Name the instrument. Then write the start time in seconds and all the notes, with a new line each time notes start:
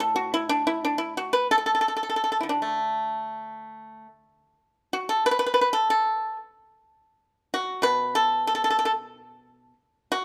pipa
Already playing: A2
0.00 A4
0.16 F#4
0.34 E4
0.49 D4
0.67 E4
0.85 D4
0.98 E4
1.17 F#4
1.33 B4
1.51 A4
1.58 A4
1.66 A4
1.75 A4
1.81 A4
1.88 A4
1.97 A4
2.03 A4
2.10 A4
2.16 A4
2.24 A4
2.32 A4
2.41 D3 E4
2.49 D4
2.62 A3
4.93 F#4
5.09 A4
5.26 B4
5.31 B4
5.39 B4
5.46 B4
5.54 B4
5.61 B4
5.73 A4
5.90 A4
7.54 F#4
7.82 B2 B4
8.15 A4
8.47 A4
8.55 A4
8.64 A4
8.70 A4
8.79 A4
8.85 A4
10.12 F#4